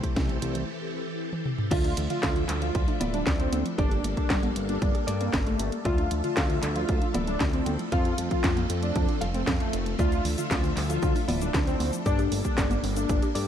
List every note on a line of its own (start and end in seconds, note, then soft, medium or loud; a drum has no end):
0.00 0.08 C3 medium
0.00 1.70 E3 medium
0.00 0.68 A3 medium
0.00 1.68 C4 medium
0.00 0.68 E4 medium
0.00 0.68 G4 medium
0.00 1.67 G4 medium
0.00 1.70 A4 medium
0.00 0.68 C5 medium
0.00 kick medium
0.00 closed hi-hat medium
0.16 0.39 C2 medium
0.16 0.21 C3 medium
0.16 kick loud
0.16 snare loud
0.16 closed hi-hat medium
0.29 0.40 C3 medium
0.29 closed hi-hat soft
0.42 0.64 C2 loud
0.42 0.50 E3 medium
0.42 closed hi-hat loud
0.55 0.62 E3 medium
0.55 closed hi-hat medium
1.33 high tom medium
1.46 mid tom medium
1.58 mid tom medium
1.71 1.94 D2 loud
1.71 1.83 D3 medium
1.71 3.76 F3 medium
1.71 2.98 A3 medium
1.71 7.88 D4 medium
1.71 1.96 F4 loud
1.71 2.98 F4 medium
1.71 13.48 A4 medium
1.71 2.98 D5 medium
1.71 3.76 E5 medium
1.71 2.98 E5 medium
1.71 kick loud
1.71 closed hi-hat medium
1.71 crash loud
1.84 1.89 D4 loud
1.84 closed hi-hat soft
1.97 2.08 D2 medium
1.97 2.05 E3 medium
1.97 closed hi-hat loud
2.10 2.15 D3 medium
2.10 2.42 F4 loud
2.10 closed hi-hat soft
2.23 2.45 D2 medium
2.23 2.28 D3 medium
2.23 kick loud
2.23 snare loud
2.23 clap medium
2.23 closed hi-hat medium
2.36 2.47 D3 medium
2.36 closed hi-hat soft
2.49 2.71 D2 loud
2.49 2.56 G3 medium
2.49 clap medium
2.49 closed hi-hat medium
2.62 2.69 F3 medium
2.62 2.94 F4 medium
2.62 closed hi-hat soft
2.75 2.86 D2 medium
2.75 2.86 D4 medium
2.75 kick loud
2.75 closed hi-hat medium
2.88 2.92 D4 loud
2.88 closed hi-hat soft
3.00 3.23 D1 loud
3.00 3.08 E3 medium
3.00 3.75 A3 medium
3.00 3.75 E4 medium
3.00 3.75 F4 medium
3.00 3.75 D5 medium
3.00 closed hi-hat medium
3.00 high conga medium
3.13 3.18 G3 medium
3.13 3.30 D4 medium
3.13 closed hi-hat soft
3.27 3.49 D2 medium
3.27 3.34 D3 medium
3.27 kick loud
3.27 snare loud
3.27 clap medium
3.27 closed hi-hat medium
3.39 3.44 D2 medium
3.39 3.64 C4 loud
3.39 closed hi-hat soft
3.52 3.64 D2 medium
3.52 3.60 G3 medium
3.52 closed hi-hat medium
3.52 high conga medium
3.65 3.73 F3 medium
3.65 closed hi-hat soft
3.78 4.01 G1 loud
3.78 3.89 G3 medium
3.78 5.83 G3 medium
3.78 5.05 A#3 loud
3.78 5.83 A#3 medium
3.78 4.03 D4 loud
3.78 5.05 G4 medium
3.78 5.05 A4 medium
3.78 5.05 D5 medium
3.78 kick loud
3.78 closed hi-hat medium
3.91 3.96 G4 loud
3.91 closed hi-hat soft
4.04 4.15 G1 medium
4.04 4.12 A3 medium
4.04 closed hi-hat loud
4.17 4.22 G3 medium
4.17 4.49 D4 medium
4.17 kick medium
4.17 closed hi-hat soft
4.30 4.52 G1 medium
4.30 4.34 G3 medium
4.30 kick loud
4.30 snare loud
4.30 clap medium
4.30 closed hi-hat medium
4.43 4.54 G3 medium
4.43 closed hi-hat soft
4.43 high conga medium
4.56 4.78 G1 loud
4.56 4.63 C4 medium
4.56 closed hi-hat loud
4.69 4.76 A#3 medium
4.69 5.01 D4 loud
4.69 closed hi-hat soft
4.82 4.93 G1 medium
4.82 4.93 G4 medium
4.82 kick loud
4.82 closed hi-hat medium
4.95 4.99 G4 loud
4.95 closed hi-hat soft
5.07 5.30 G2 loud
5.07 5.15 A3 medium
5.07 5.82 A#3 medium
5.07 5.82 G4 medium
5.07 5.82 A4 medium
5.07 5.82 D5 medium
5.07 closed hi-hat medium
5.21 5.37 A#3 medium
5.21 5.25 C4 medium
5.21 closed hi-hat soft
5.34 5.56 G1 medium
5.34 5.41 G3 medium
5.34 kick loud
5.34 snare loud
5.34 clap medium
5.34 closed hi-hat medium
5.46 5.51 G2 medium
5.46 5.71 A3 medium
5.46 closed hi-hat soft
5.59 5.71 G1 medium
5.59 5.67 C4 medium
5.59 closed hi-hat medium
5.72 5.80 A#3 medium
5.72 closed hi-hat soft
5.85 6.08 D2 loud
5.85 5.96 D3 medium
5.85 12.02 F3 medium
5.85 7.11 A3 loud
5.85 7.11 F4 medium
5.85 6.09 F4 loud
5.85 7.11 D5 loud
5.85 7.90 E5 medium
5.85 7.11 E5 medium
5.85 kick loud
5.85 closed hi-hat medium
5.98 6.03 D4 loud
5.98 closed hi-hat soft
6.11 6.22 D2 medium
6.11 6.19 E3 medium
6.11 closed hi-hat medium
6.24 6.29 D3 medium
6.24 6.56 F4 loud
6.24 closed hi-hat soft
6.37 6.59 D2 medium
6.37 6.41 D3 medium
6.37 kick loud
6.37 snare loud
6.37 clap medium
6.37 closed hi-hat medium
6.50 6.61 D3 medium
6.50 closed hi-hat soft
6.63 6.85 D2 loud
6.63 6.70 G3 medium
6.63 clap medium
6.63 closed hi-hat loud
6.76 6.83 F3 medium
6.76 7.08 F4 loud
6.76 closed hi-hat soft
6.89 7.00 D2 medium
6.89 7.00 D4 medium
6.89 kick loud
6.89 closed hi-hat medium
7.02 7.06 D4 loud
7.02 closed hi-hat soft
7.14 7.37 D1 loud
7.14 7.22 E3 medium
7.14 7.89 A3 medium
7.14 7.89 E4 medium
7.14 7.89 F4 medium
7.14 7.89 D5 medium
7.14 closed hi-hat medium
7.14 high conga medium
7.27 7.32 G3 medium
7.27 7.44 D4 medium
7.27 closed hi-hat soft
7.40 7.63 D2 medium
7.40 7.48 D3 medium
7.40 kick loud
7.40 snare loud
7.40 clap medium
7.40 closed hi-hat medium
7.53 7.58 D2 medium
7.53 7.77 C4 loud
7.53 closed hi-hat soft
7.66 7.77 D2 medium
7.66 7.74 G3 medium
7.66 closed hi-hat medium
7.66 high conga medium
7.79 7.87 F3 medium
7.79 closed hi-hat soft
7.92 8.14 F2 loud
7.92 8.03 F3 medium
7.92 9.97 A3 medium
7.92 9.18 C4 loud
7.92 9.97 C4 medium
7.92 8.16 F4 loud
7.92 9.18 F4 medium
7.92 9.18 A4 medium
7.92 9.18 F5 medium
7.92 kick loud
7.92 closed hi-hat medium
8.05 8.10 F4 loud
8.05 closed hi-hat soft
8.18 8.29 F2 medium
8.18 8.25 G3 medium
8.18 closed hi-hat medium
8.31 8.35 F3 medium
8.31 8.63 F4 loud
8.31 kick medium
8.31 closed hi-hat soft
8.44 8.66 F2 medium
8.44 8.48 F3 medium
8.44 kick loud
8.44 snare loud
8.44 clap medium
8.44 closed hi-hat medium
8.57 8.68 F3 medium
8.57 closed hi-hat soft
8.57 high conga medium
8.70 8.92 F2 loud
8.70 8.77 A3 medium
8.70 closed hi-hat medium
8.83 8.90 A3 medium
8.83 9.15 D4 medium
8.83 closed hi-hat soft
8.96 9.07 F2 medium
8.96 9.07 F4 medium
8.96 kick loud
8.96 closed hi-hat medium
9.08 9.13 F4 loud
9.08 closed hi-hat soft
9.21 9.44 F1 medium
9.21 9.29 G3 medium
9.21 9.96 C4 medium
9.21 9.96 F4 medium
9.21 9.96 A4 medium
9.21 9.96 F5 medium
9.21 closed hi-hat medium
9.34 9.39 A3 medium
9.34 9.51 C4 medium
9.34 closed hi-hat soft
9.47 9.59 F2 medium
9.47 9.55 F3 medium
9.47 kick loud
9.47 snare loud
9.47 clap medium
9.47 closed hi-hat medium
9.60 9.65 F2 medium
9.60 9.84 A3 loud
9.60 closed hi-hat soft
9.73 9.95 F1 medium
9.73 9.81 A3 medium
9.73 closed hi-hat medium
9.86 9.93 A3 medium
9.86 closed hi-hat soft
9.99 10.21 D2 loud
9.99 10.10 D3 medium
9.99 11.25 A3 medium
9.99 13.48 D4 medium
9.99 11.25 F4 medium
9.99 10.23 F4 loud
9.99 11.25 D5 medium
9.99 12.04 E5 medium
9.99 11.25 E5 medium
9.99 kick loud
9.99 closed hi-hat medium
9.99 cabasa soft
10.12 10.16 D4 loud
10.12 closed hi-hat soft
10.12 cabasa soft
10.25 10.36 D2 medium
10.25 10.32 E3 medium
10.25 open hi-hat loud
10.38 10.42 D3 medium
10.38 10.70 F4 medium
10.38 closed hi-hat soft
10.38 cabasa medium
10.51 10.73 D2 medium
10.51 10.55 D3 medium
10.51 kick loud
10.51 snare loud
10.51 clap medium
10.51 closed hi-hat medium
10.51 cabasa medium
10.64 10.75 D3 medium
10.64 closed hi-hat soft
10.64 cabasa soft
10.77 10.99 D2 loud
10.77 10.84 G3 medium
10.77 clap medium
10.77 open hi-hat loud
10.90 10.97 F3 medium
10.90 11.22 F4 loud
10.90 closed hi-hat soft
10.90 cabasa medium
11.03 11.14 D2 medium
11.03 11.14 D4 medium
11.03 kick loud
11.03 closed hi-hat medium
11.03 cabasa soft
11.15 11.20 D4 loud
11.15 open hi-hat medium
11.15 cabasa soft
11.28 11.51 D1 loud
11.28 11.36 E3 medium
11.28 12.03 A3 medium
11.28 12.03 E4 medium
11.28 12.03 F4 medium
11.28 12.03 D5 medium
11.28 open hi-hat loud
11.28 high conga medium
11.41 11.46 G3 medium
11.41 11.57 D4 medium
11.41 closed hi-hat soft
11.41 cabasa medium
11.54 11.77 D2 medium
11.54 11.62 D3 medium
11.54 kick loud
11.54 snare loud
11.54 clap medium
11.54 closed hi-hat medium
11.54 cabasa medium
11.67 11.72 D2 medium
11.67 11.91 C4 loud
11.67 closed hi-hat soft
11.67 cabasa soft
11.80 11.91 D2 medium
11.80 11.87 G3 medium
11.80 open hi-hat loud
11.80 high conga medium
11.93 12.00 F3 medium
11.93 closed hi-hat soft
11.93 cabasa medium
12.06 12.28 G1 medium
12.06 13.48 G3 medium
12.06 12.17 G3 medium
12.06 13.32 A#3 medium
12.06 13.48 A#3 medium
12.06 12.30 D4 loud
12.06 13.32 G4 medium
12.06 13.32 A4 medium
12.06 13.32 D5 medium
12.06 kick loud
12.06 closed hi-hat medium
12.06 cabasa medium
12.19 12.23 G4 loud
12.19 closed hi-hat soft
12.19 cabasa soft
12.32 12.43 G1 medium
12.32 12.39 A3 medium
12.32 open hi-hat loud
12.45 12.49 G3 medium
12.45 12.77 D4 loud
12.45 kick medium
12.45 closed hi-hat soft
12.45 cabasa medium
12.58 12.80 G1 medium
12.58 12.62 G3 medium
12.58 kick loud
12.58 snare loud
12.58 clap medium
12.58 closed hi-hat medium
12.58 cabasa medium
12.71 12.82 G3 medium
12.71 closed hi-hat soft
12.71 high conga medium
12.71 cabasa soft
12.84 13.06 G1 loud
12.84 12.91 C4 medium
12.84 open hi-hat loud
12.96 13.04 A#3 medium
12.96 13.29 D4 loud
12.96 closed hi-hat soft
12.96 cabasa medium
13.09 13.21 G1 medium
13.09 13.21 G4 medium
13.09 kick loud
13.09 closed hi-hat medium
13.09 cabasa medium
13.22 13.27 G4 loud
13.22 closed hi-hat soft
13.22 cabasa soft
13.35 13.48 G2 loud
13.35 13.43 A3 medium
13.35 13.48 A#3 medium
13.35 13.48 G4 medium
13.35 13.48 A4 medium
13.35 13.48 D5 medium
13.35 open hi-hat loud